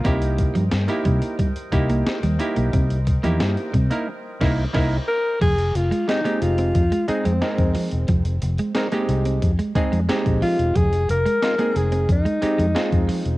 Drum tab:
CC |----------------|----------x-x---|x---------------|----------------|
HH |xxxxxxxxxxxxxxxx|xxxxxxxx--------|xxxxxxxxxxxxxxox|xxxxxxxxxxxxxxox|
SD |----o-------o---|----o-----o-o---|----o-------o---|----o-------o---|
BD |o-o---o-o-o-----|o-o---o---o-o---|o-------o----o--|o-------o-o--o--|

CC |----------------|
HH |xxxxxxxxxxxxxxox|
SD |----o-------o---|
BD |o-------o----o--|